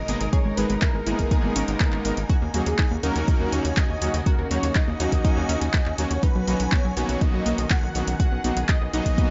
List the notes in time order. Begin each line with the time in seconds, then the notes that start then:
Already playing: B2 G#3 D#4 F#4 A#4 D#5 G#5
0.08 G#1 G#3 A#3 B3 D#4 G#4, open hi-hat
0.21 G#1, closed hi-hat
0.33 G#4 C#5, kick, closed hi-hat
0.45 G#1 G#3
0.57 G#1 G#3 A#3 B3 D#4 G#4 B4, open hi-hat
0.70 G#1 G#3, closed hi-hat
0.82 E4 A#4, kick, clap, closed hi-hat
0.94 G#1 G#3
1.07 G#1 G#3 A#3 B3 D#4 E4 G#4, open hi-hat
1.19 G#1 G#3, kick, closed hi-hat
1.31 D#4, kick, closed hi-hat
1.43 G#1 G#3
1.56 G#1 G#3 A#3 B3 C#4 D#4 A#4, open hi-hat
1.68 G#1, closed hi-hat
1.80 kick, clap, closed hi-hat
1.92 G#1, clap
2.05 G#1 G#3 A#3 B3 D#4 A#4, open hi-hat
2.17 G#1, closed hi-hat
2.29 C#3 C#4 F#4, kick, closed hi-hat
2.42 D#2 A#3
2.54 D#2 F#3 A#3 C#4 D#4 F#4 G#4, open hi-hat
2.66 D#2 A#3, closed hi-hat
2.78 D#4, kick, clap, closed hi-hat
2.91 D#2 A#3
3.03 D#2 F#3 A#3 C#4 D#4 F#4 A#4, open hi-hat
3.16 D#2 A#3, closed hi-hat
3.28 D#4, kick, closed hi-hat
3.40 D#2 A#3
3.52 D#2 F#3 A#3 C#4 D#4 F#4 C#5, open hi-hat
3.65 D#2, closed hi-hat
3.77 D#5, kick, clap, closed hi-hat
3.89 D#2
4.02 D#2 F#3 A#3 C#4 D#4 F#4, open hi-hat
4.14 D#2, closed hi-hat
4.26 F#4 A#4, kick, closed hi-hat
4.38 D#2 A#3
4.51 D#2 F#3 A#3 C#4 D#4 F#4 C#5, open hi-hat
4.63 D#2 A#3, closed hi-hat
4.75 D#4 D#5, kick, clap, closed hi-hat
4.88 D#2 A#3
5.00 D#2 F#3 A#3 C#4 D#4 F#4, open hi-hat
5.12 D#2 A#3, kick, closed hi-hat
5.25 D#4, kick, closed hi-hat
5.37 D#2 A#3
5.49 D#2 F#3 A#3 C#4 D#4 F#4, open hi-hat
5.61 D#2, closed hi-hat
5.73 kick, clap, closed hi-hat
5.86 D#2, clap
5.98 D#2 F#3 A#3 C#4 D#4 F#4 C#5, open hi-hat
6.11 D#2, closed hi-hat
6.23 D#3 D#4 B4, kick, closed hi-hat
6.35 B1 F#3
6.47 B1 F#3 A#3 B3 D#4 F#4, open hi-hat
6.60 B1 F#3, closed hi-hat
6.72 B3 C#5, kick, clap, closed hi-hat
6.84 B1 F#3
6.97 B1 F#3 A#3 B3 D#4 F#4, open hi-hat
7.09 B1 F#3, closed hi-hat
7.21 B3 D#5, kick, closed hi-hat
7.34 B1 F#3
7.46 B1 F#3 A#3 B3 D#4 F#4, open hi-hat
7.58 B1, closed hi-hat
7.70 F#5, kick, clap, closed hi-hat
7.83 B1
7.95 B1 F#3 A#3 B3 D#4 F#4, open hi-hat
8.07 B1, closed hi-hat
8.20 F#4 G#4 F#5, kick, closed hi-hat
8.32 B1 B3
8.44 B1 F#3 A#3 B3 D#4 F#4, open hi-hat
8.57 B1 B3, closed hi-hat
8.69 D#4 D#5, kick, clap, closed hi-hat
8.81 B1 B3
8.93 B1 F#3 A#3 B3 D#4 F#4 D#5, open hi-hat
9.06 B1 B3, kick, closed hi-hat
9.18 B3, kick, closed hi-hat